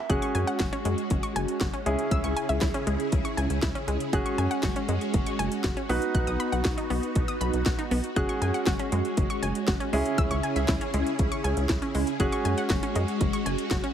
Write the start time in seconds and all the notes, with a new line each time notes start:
0.09 F#1 G#3 C#4 F#4 G#4 F#6, kick, closed hi-hat
0.22 C#6, closed hi-hat
0.35 F#2 G#5, closed hi-hat
0.47 F#5, closed hi-hat
0.60 F#1 F#4, kick, snare, closed hi-hat
0.73 C#4, closed hi-hat
0.85 F#2 G#3, closed hi-hat
0.98 closed hi-hat
1.10 F#1, kick, closed hi-hat
1.23 C#6, closed hi-hat
1.36 F#1 G#5, closed hi-hat
1.48 closed hi-hat
1.61 F#1 F#4, kick, snare, closed hi-hat
1.73 C#4, closed hi-hat
1.86 C#2 C#3 G#3 C#4 E4 G#4, closed hi-hat
1.99 closed hi-hat
2.11 C#2 E6, kick, closed hi-hat
2.24 C#2 C#6, closed hi-hat
2.37 G#5, closed hi-hat
2.49 C#2 E5, closed hi-hat
2.61 C#2 E4, kick, snare, closed hi-hat
2.74 C#4, closed hi-hat
2.87 C#2 G#3, closed hi-hat
3.00 closed hi-hat
3.12 C#2, kick, closed hi-hat
3.25 C#6, closed hi-hat
3.37 C#2 G#5, closed hi-hat
3.50 C#2, closed hi-hat
3.62 C#2 E4, kick, snare, closed hi-hat
3.75 C#4, closed hi-hat
3.88 C#2 G#3, closed hi-hat
4.00 closed hi-hat
4.13 F#1 G#3 C#4 F#4 G#4 F#6, kick, closed hi-hat
4.26 C#6, closed hi-hat
4.38 F#2 G#5, closed hi-hat
4.51 F#5, closed hi-hat
4.63 F#1 F#4, kick, snare, closed hi-hat
4.76 C#4, closed hi-hat
4.88 F#2 G#3, closed hi-hat
5.01 closed hi-hat
5.14 F#1, kick, closed hi-hat
5.26 C#6, closed hi-hat
5.39 F#1 G#5, closed hi-hat
5.52 closed hi-hat
5.64 F#1 F#4, kick, snare, closed hi-hat
5.77 C#4, closed hi-hat
5.89 B1 B3 D#4 F#4 B4, open hi-hat
6.02 closed hi-hat
6.14 B1 F#6, kick, closed hi-hat
6.27 B1 D#6, closed hi-hat
6.40 B5, closed hi-hat
6.52 B1 F#5, closed hi-hat
6.65 B1 F#4, kick, snare, closed hi-hat
6.78 D#4, closed hi-hat
6.90 B1 B3, open hi-hat
7.03 closed hi-hat
7.15 B1, kick, closed hi-hat
7.28 D#6, closed hi-hat
7.41 B1 B5, closed hi-hat
7.53 B1, closed hi-hat
7.66 B1 F#4, kick, snare, closed hi-hat
7.79 D#4, closed hi-hat
7.91 B1 B3, open hi-hat
8.04 closed hi-hat
8.16 F#1 G#3 C#4 F#4 G#4 F#6, kick, closed hi-hat
8.29 C#6, closed hi-hat
8.42 F#2 G#5, closed hi-hat
8.54 F#5, closed hi-hat
8.67 F#1 F#4, kick, snare, closed hi-hat
8.79 C#4, closed hi-hat
8.92 F#2 G#3, closed hi-hat
9.05 closed hi-hat
9.17 F#1, kick, closed hi-hat
9.30 C#6, closed hi-hat
9.42 F#1 G#5, closed hi-hat
9.55 closed hi-hat
9.68 F#1 F#4, kick, snare, closed hi-hat
9.80 C#4, closed hi-hat
9.93 C#2 C#3 G#3 C#4 E4 G#4, open hi-hat
10.05 closed hi-hat
10.18 C#2 E6, kick, closed hi-hat
10.31 C#2 C#6, closed hi-hat
10.43 G#5, closed hi-hat
10.56 C#2 E5, closed hi-hat
10.68 C#2 E4, kick, snare, closed hi-hat
10.81 C#4, closed hi-hat
10.94 C#2 G#3, closed hi-hat
11.07 closed hi-hat
11.19 C#2, kick, closed hi-hat
11.32 C#6, closed hi-hat
11.44 C#2 G#5, closed hi-hat
11.57 C#2, closed hi-hat
11.69 C#2 E4, kick, snare, closed hi-hat
11.82 C#4, closed hi-hat
11.95 C#2 G#3, open hi-hat
12.07 closed hi-hat
12.20 F#1 G#3 C#4 F#4 G#4 F#6, kick, closed hi-hat
12.32 C#6, closed hi-hat
12.45 F#2 G#5, closed hi-hat
12.58 F#5, closed hi-hat
12.70 F#1 F#4, kick, snare, closed hi-hat
12.83 C#4, closed hi-hat
12.95 F#2 G#3, closed hi-hat
13.08 closed hi-hat
13.21 F#1, kick, closed hi-hat
13.33 C#6, closed hi-hat
13.46 F#1 G#5, closed hi-hat
13.58 closed hi-hat
13.71 F#1 F#4, kick, snare, closed hi-hat
13.84 C#4, closed hi-hat